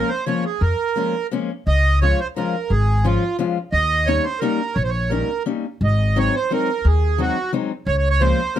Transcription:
0.09 0.25 C5 medium
0.26 0.44 F3 medium
0.26 0.44 G#3 soft
0.26 0.45 A#3 medium
0.26 0.45 C#4 medium
0.26 0.44 C#5 medium
0.45 0.62 G#4 medium
0.61 0.73 F2 medium
0.61 1.27 A#4 medium
0.96 1.14 F3 medium
0.96 1.14 G#3 soft
0.96 1.14 A#3 soft
0.96 1.14 C#4 medium
1.31 1.49 F3 medium
1.31 1.49 G#3 medium
1.31 1.50 A#3 medium
1.31 1.50 C#4 medium
1.67 2.12 C#2 medium
1.67 1.99 D#5 loud
2.02 2.19 F3 medium
2.02 2.19 G#3 medium
2.02 2.20 C#4 medium
2.02 2.20 F4 medium
2.02 2.20 C#5 medium
2.20 2.28 C5 medium
2.36 2.54 F3 medium
2.36 2.54 G#3 medium
2.36 2.54 C#4 medium
2.36 2.55 F4 medium
2.36 2.72 A#4 medium
2.70 3.15 G#1 medium
2.70 3.06 G#4 medium
3.04 3.22 F3 medium
3.04 3.23 G#3 medium
3.04 3.23 C#4 medium
3.04 3.37 F4 medium
3.04 3.23 F4 medium
3.39 3.57 F3 medium
3.39 3.57 G#3 medium
3.39 3.57 C#4 medium
3.39 3.57 F4 medium
3.72 4.17 D#2 medium
3.72 4.08 D#5 loud
4.06 4.25 G3 medium
4.06 4.25 A#3 medium
4.06 4.25 C#4 medium
4.06 4.26 D#4 medium
4.06 4.25 C#5 loud
4.24 4.40 C5 medium
4.39 4.59 G3 medium
4.39 4.60 A#3 medium
4.39 4.60 C#4 medium
4.39 4.60 D#4 medium
4.39 4.76 A#4 medium
4.75 5.21 A#1 medium
4.75 4.83 C#5 medium
4.83 4.90 C5 medium
4.89 5.11 C#5 medium
5.09 5.29 G3 medium
5.09 5.29 A#3 soft
5.09 5.29 C#4 soft
5.09 5.29 D#4 medium
5.09 5.43 A#4 medium
5.46 5.64 G3 medium
5.46 5.64 A#3 soft
5.46 5.65 C#4 soft
5.46 5.65 D#4 medium
5.81 6.26 G#1 medium
5.81 6.19 D#5 medium
6.16 6.34 F#3 medium
6.16 6.34 G#3 medium
6.16 6.34 C4 medium
6.16 6.35 D#4 medium
6.16 6.35 C#5 medium
6.36 6.52 C5 medium
6.51 6.69 F#3 medium
6.51 6.69 G#3 soft
6.51 6.69 C4 medium
6.51 6.69 D#4 medium
6.51 6.87 A#4 medium
6.85 7.29 D#2 medium
6.85 7.21 G#4 medium
7.18 7.36 F#3 medium
7.18 7.36 G#3 medium
7.18 7.37 C4 medium
7.18 7.37 D#4 medium
7.18 7.52 F#4 medium
7.52 7.70 F#3 medium
7.52 7.71 G#3 soft
7.52 7.71 C4 medium
7.52 7.71 D#4 medium
7.86 8.32 C#2 medium
7.86 7.96 C#5 loud
7.98 8.09 C#5 medium
8.10 8.22 C#5 loud
8.21 8.39 F3 medium
8.21 8.39 G#3 medium
8.21 8.39 A#3 medium
8.21 8.40 C#4 medium
8.21 8.57 C5 loud
8.56 8.60 F3 medium
8.56 8.60 G#3 medium
8.56 8.60 A#3 medium
8.56 8.60 A#4 medium

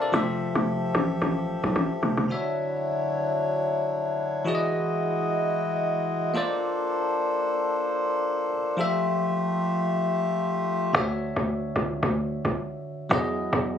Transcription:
0.00 0.11 C3 medium
0.00 0.11 A#3 medium
0.00 0.11 D4 medium
0.00 2.26 A4 medium
0.00 0.14 A4 medium
0.00 0.16 C5 medium
0.00 0.27 D5 medium
0.00 0.15 E5 medium
0.00 0.15 F5 medium
0.00 0.15 A5 medium
0.12 0.52 F1 loud
0.12 2.25 F3 medium
0.12 2.28 F3 medium
0.12 2.25 F4 medium
0.12 2.28 G4 medium
0.12 2.26 G4 medium
0.12 2.26 A4 medium
0.12 2.28 E5 medium
0.12 2.27 E5 medium
0.55 0.92 F1 loud
0.95 1.20 A1 loud
1.22 1.60 A1 loud
1.64 1.75 B1 medium
1.76 1.90 A1 loud
2.03 2.17 F1 medium
2.17 2.29 F1 loud
2.28 4.41 D3 medium
2.28 4.44 F#3 medium
2.28 4.42 D4 medium
2.28 4.44 D4 medium
2.28 6.31 E4 medium
2.28 4.42 F#4 medium
2.28 4.44 C#5 medium
2.28 4.43 C#5 medium
2.28 4.43 E5 medium
4.45 6.31 E3 medium
4.45 6.33 G#3 medium
4.45 6.31 E4 medium
4.45 6.33 F#4 medium
4.45 6.32 F#4 medium
4.45 6.32 G#4 medium
4.45 4.54 D5 medium
4.45 6.33 D#5 medium
4.55 6.36 D#5 medium
6.34 8.47 A#3 medium
6.34 8.76 A#3 medium
6.34 8.76 D4 medium
6.34 8.47 F4 medium
6.34 8.76 A4 medium
6.34 8.48 A4 medium
6.34 8.76 C5 medium
6.34 8.48 C5 medium
6.34 8.49 D5 medium
8.77 10.90 F3 medium
8.77 10.93 A3 medium
8.77 10.90 F4 medium
8.77 10.93 F4 medium
8.77 10.93 G4 medium
8.77 10.91 G4 medium
8.77 10.91 A4 medium
8.77 10.93 E5 medium
8.77 10.92 E5 medium
10.93 11.33 D2 loud
10.93 13.06 D3 medium
10.93 13.07 D4 medium
10.93 13.07 F#4 medium
10.93 13.08 C#5 medium
10.93 13.08 E5 medium
11.36 11.73 D2 loud
11.76 12.01 C#2 medium
12.03 12.42 D2 loud
12.45 12.56 C#2 medium
13.09 13.50 E2 loud
13.09 13.78 F#3 medium
13.09 13.78 E4 medium
13.09 13.78 F#4 medium
13.09 13.78 G#4 medium
13.09 13.78 D#5 medium
13.53 13.78 E2 loud

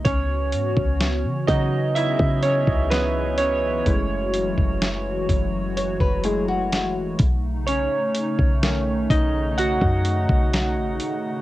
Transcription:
0.05 0.55 C#2 loud
0.05 7.16 E3 medium
0.05 3.82 B3 medium
0.05 3.82 C#4 medium
0.05 1.45 C#4 medium
0.05 1.94 F#4 medium
0.05 1.52 C#5 medium
0.05 kick loud
0.05 closed hi-hat medium
0.52 0.76 G#2 loud
0.52 closed hi-hat medium
0.77 1.26 C#2 loud
0.77 kick medium
1.01 snare loud
1.01 closed hi-hat medium
1.25 1.47 C#3 loud
1.47 2.17 C#3 loud
1.47 3.82 E3 medium
1.47 3.82 F#3 soft
1.47 2.91 B3 medium
1.47 1.93 D#4 medium
1.47 3.83 F#4 medium
1.47 1.92 D#5 medium
1.47 kick medium
1.47 closed hi-hat medium
1.95 2.41 E4 medium
1.95 3.85 G#4 medium
1.95 2.40 E5 loud
1.95 closed hi-hat medium
2.19 2.65 C#3 loud
2.19 kick medium
2.43 2.89 C#4 medium
2.43 2.92 C#5 loud
2.43 closed hi-hat medium
2.67 3.82 C#2 loud
2.67 kick loud
2.90 3.36 B3 medium
2.90 3.40 B4 medium
2.90 snare loud
2.90 closed hi-hat medium
3.38 4.78 C#4 medium
3.38 4.77 C#5 medium
3.38 closed hi-hat medium
3.86 4.55 F#1 loud
3.86 7.17 F#3 medium
3.86 5.25 G#3 medium
3.86 5.25 A3 medium
3.86 5.26 E4 medium
3.86 7.16 F#4 medium
3.86 kick loud
3.86 closed hi-hat medium
4.34 closed hi-hat medium
4.58 5.26 F#1 loud
4.58 kick medium
4.82 snare loud
4.82 closed hi-hat medium
5.29 5.98 F#1 loud
5.29 kick medium
5.29 closed hi-hat medium
5.77 5.99 C#5 medium
5.77 closed hi-hat medium
6.00 7.15 F#1 medium
6.00 6.23 B4 medium
6.00 kick medium
6.24 6.68 G#3 soft
6.24 6.68 A3 soft
6.24 6.68 E4 medium
6.24 6.47 G#4 medium
6.24 closed hi-hat medium
6.48 7.16 F#4 medium
6.72 snare loud
6.72 closed hi-hat medium
7.19 7.88 B1 loud
7.19 11.42 C#3 medium
7.19 11.42 A3 medium
7.19 11.42 D#4 medium
7.19 kick loud
7.19 closed hi-hat medium
7.67 8.63 C#4 medium
7.67 9.14 C#5 medium
7.67 closed hi-hat medium
8.15 closed hi-hat medium
8.39 9.07 B1 loud
8.39 kick medium
8.63 10.01 D#3 medium
8.63 10.02 A3 medium
8.63 10.02 C#4 medium
8.63 snare loud
8.63 closed hi-hat medium
9.10 9.79 B1 loud
9.10 9.26 D#4 medium
9.10 9.24 D#5 medium
9.10 kick medium
9.10 closed hi-hat medium
9.58 11.42 F#4 medium
9.58 11.42 F#5 loud
9.58 closed hi-hat medium
9.81 10.27 F#2 loud
9.81 kick medium
10.05 closed hi-hat medium
10.29 10.79 B1 loud
10.29 kick loud
10.54 snare loud
10.54 closed hi-hat medium
10.77 11.00 A1 medium
11.00 closed hi-hat medium

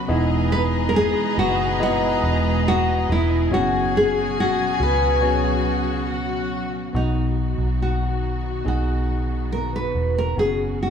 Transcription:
0.00 0.11 F#3 medium
0.00 0.09 B3 medium
0.00 0.10 C#4 medium
0.00 0.11 F#4 medium
0.08 1.12 E1 loud
0.08 3.48 B2 medium
0.08 1.34 E3 medium
0.08 3.48 E3 medium
0.08 1.71 G#3 medium
0.08 3.49 G#3 medium
0.08 1.72 B3 medium
0.08 1.72 D#4 medium
0.08 1.72 E4 loud
0.08 3.48 G#4 medium
0.08 3.48 B4 medium
0.08 3.49 D#5 medium
0.08 3.48 A#5 medium
0.52 0.62 B4 loud
0.89 0.95 A#4 medium
0.96 1.38 G#4 loud
1.37 2.19 F#1 loud
1.37 1.82 F#4 medium
1.80 3.43 G#3 medium
1.80 3.43 B3 medium
1.80 3.44 E4 medium
1.80 2.67 F#4 loud
1.80 3.44 D#5 medium
2.23 3.05 E1 medium
2.68 3.11 F#4 loud
3.09 3.49 E1 medium
3.09 3.50 E4 medium
3.51 4.76 F#1 loud
3.51 6.91 B2 medium
3.51 6.91 C#3 medium
3.51 5.14 F#3 medium
3.51 6.91 F#3 medium
3.51 5.15 B3 medium
3.51 6.91 C#4 medium
3.51 5.15 C#4 medium
3.51 6.91 F#4 medium
3.51 5.15 F#4 medium
3.51 3.93 F#4 loud
3.51 6.05 G#4 medium
3.51 6.05 G#5 loud
3.97 4.36 G#4 medium
4.40 4.82 F#4 loud
4.80 6.90 C#2 medium
4.80 6.49 B4 medium
5.22 6.86 F#3 medium
5.22 6.86 B3 medium
5.22 6.86 C#4 medium
5.22 6.87 F#4 medium
6.09 6.93 F#4 medium
6.09 6.93 F#5 medium
6.93 7.55 B1 medium
6.93 10.90 B2 medium
6.93 8.19 B2 medium
6.93 10.34 D#3 medium
6.93 10.90 F#3 medium
6.93 8.57 B3 medium
6.93 8.57 D#4 medium
6.93 10.34 D#4 medium
6.93 7.82 D#4 medium
6.93 10.34 F#4 medium
6.93 8.58 F#4 medium
7.58 8.62 B1 medium
7.82 8.67 F#4 medium
8.65 9.91 B1 medium
8.65 10.28 B3 medium
8.65 10.29 D#4 medium
8.65 9.55 F#4 medium
8.65 10.29 G#4 medium
9.52 9.72 A#4 medium
9.76 10.14 B4 medium
9.94 10.34 E1 medium
10.18 10.39 A#4 medium
10.36 10.90 F#1 medium
10.36 10.90 C#3 medium
10.36 10.90 B3 medium
10.36 10.90 C#4 medium
10.36 10.90 F#4 medium
10.36 10.82 G#4 medium
10.83 10.90 F#4 medium

